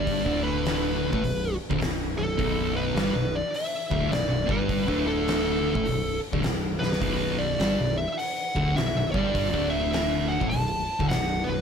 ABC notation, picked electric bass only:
X:1
M:4/4
L:1/16
Q:"Swing" 1/4=103
K:Bm
V:1 name="Picked electric bass" clef=bass
G,,, D,,,6 A,,, B,,,,2 z D,,, B,,,,2 B,,,,2 | B,,,,4 G,,, B,,,,2 z3 D,,,2 B,,,, B,,,, G,,,2- | G,,, D,,,6 A,,, B,,,,2 z D,,, B,,,,2 B,,,,2 | B,,,,4 G,,, B,,,,2 z3 D,,,2 B,,,, B,,,, G,,,2- |
G,,, D,,,6 A,,, B,,,,2 z D,,, B,,,,2 B,,,,2 |]